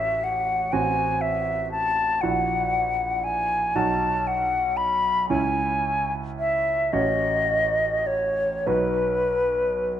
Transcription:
0.00 0.69 A1 soft
0.00 0.69 C#4 soft
0.00 0.69 F#4 soft
0.00 0.69 C#5 soft
0.00 0.25 E5 medium
0.24 0.74 F#5 medium
0.73 2.19 A1 soft
0.73 2.20 C4 soft
0.73 2.19 F#4 soft
0.73 2.20 F#5 soft
0.73 1.23 G#5 medium
1.21 1.71 E5 medium
1.72 2.23 A5 medium
2.21 3.72 A#1 soft
2.21 3.72 E4 soft
2.21 3.72 F#4 soft
2.21 3.25 F#5 medium
2.21 3.72 F#5 soft
3.24 3.77 G#5 medium
3.75 5.26 B1 soft
3.75 5.26 D#4 soft
3.75 5.26 F#4 soft
3.75 5.26 F#5 soft
3.75 4.29 A5 medium
4.27 4.78 F#5 medium
4.77 5.29 B5 medium
5.29 6.89 C#2 soft
5.29 6.89 C#4 soft
5.29 6.89 E4 soft
5.29 6.89 C#5 soft
5.29 6.13 G#5 medium
6.39 6.94 E5 medium
6.93 8.62 A1 soft
6.93 8.62 C#4 soft
6.93 8.62 F#4 soft
6.93 8.62 C#5 soft
6.93 8.08 D#5 medium
8.07 8.69 C#5 medium
8.66 10.00 B1 soft
8.66 10.00 D#4 soft
8.66 10.00 F#4 soft
8.66 10.00 B4 soft
8.66 10.00 B4 medium

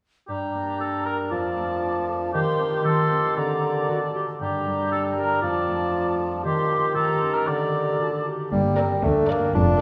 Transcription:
0.28 1.33 G2 soft
0.28 1.27 G3 soft
0.28 1.33 D4 soft
0.28 0.76 G4 medium
0.28 1.27 A#5 soft
0.55 1.33 A#3 soft
0.80 1.81 D4 soft
0.80 1.05 A4 medium
1.05 1.33 A#4 soft
1.05 1.17 A#4 medium
1.31 2.35 F2 soft
1.31 2.31 F3 soft
1.31 2.32 F4 soft
1.31 2.06 D5 medium
1.31 2.33 A5 soft
1.57 2.35 A3 soft
1.82 2.35 D4 soft
2.09 2.36 A4 soft
2.33 2.83 D#3 medium
2.33 3.39 D#3 medium
2.33 2.81 G4 soft
2.33 2.82 G4 medium
2.33 2.81 C6 medium
2.59 3.10 C4 soft
2.59 3.10 C5 soft
2.84 3.39 D#3 soft
2.84 3.35 G4 medium
2.84 3.36 A4 medium
2.84 3.36 C6 soft
3.11 3.39 C4 soft
3.11 3.40 C5 soft
3.36 3.87 D3 soft
3.36 4.15 D3 soft
3.36 3.88 G4 soft
3.36 4.13 D5 medium
3.36 3.89 A#5 soft
3.63 4.13 D4 soft
3.63 3.91 A#4 soft
3.88 4.42 D3 soft
3.88 4.01 F#4 soft
3.88 4.15 A5 soft
4.14 4.90 D4 soft
4.14 4.26 G4 soft
4.14 4.43 A4 soft
4.40 5.45 G2 soft
4.40 5.39 G3 soft
4.40 5.44 D4 soft
4.40 4.88 G4 medium
4.40 5.39 A#5 soft
4.66 5.45 G3 soft
4.91 5.92 D4 soft
4.91 5.03 A4 medium
5.17 5.45 G4 soft
5.17 5.41 A#4 medium
5.42 6.46 F2 soft
5.42 6.43 F3 medium
5.42 6.43 F4 soft
5.42 6.17 D5 medium
5.42 6.43 A5 soft
5.67 6.46 A3 soft
5.93 6.46 D4 soft
6.19 6.47 A4 soft
6.44 6.94 D#3 medium
6.44 7.50 D#3 medium
6.44 6.92 G4 medium
6.44 6.93 G4 medium
6.44 6.92 C6 medium
6.71 7.51 D#4 soft
6.71 7.20 G4 soft
6.95 7.50 D#3 soft
6.95 7.45 G4 medium
6.95 7.36 A4 medium
6.95 7.46 A#5 soft
7.21 7.50 C#4 soft
7.21 7.72 G4 soft
7.34 7.48 A#4 medium
7.46 7.98 D3 soft
7.46 8.27 D3 soft
7.46 7.98 G4 soft
7.46 8.26 D5 medium
7.46 7.99 A#5 soft
7.73 8.25 D4 soft
7.73 8.02 G4 soft
7.99 8.54 D3 soft
7.99 8.11 F#4 soft
7.99 8.26 A5 soft
8.25 9.02 D4 soft
8.25 8.54 F#4 soft
8.25 8.51 G4 soft
8.51 8.93 G1 medium
8.51 9.56 G2 soft
8.51 8.93 G2 medium
8.51 9.06 G3 medium
8.51 8.76 A#3 soft
8.77 9.57 A#3 soft
8.77 8.89 C4 soft
8.77 8.97 A#4 soft
8.77 8.97 D5 soft
9.02 9.44 D2 medium
9.02 9.45 D2 medium
9.02 9.31 A3 medium
9.02 9.53 D4 soft
9.02 9.81 D4 soft
9.29 9.54 A#3 medium
9.29 9.48 A#4 soft
9.29 9.57 A#4 soft
9.29 9.48 D5 soft
9.29 9.49 D5 soft
9.54 9.81 F1 medium
9.54 9.81 F2 soft
9.54 9.81 F2 medium
9.54 9.81 D4 medium
9.54 9.81 F4 medium

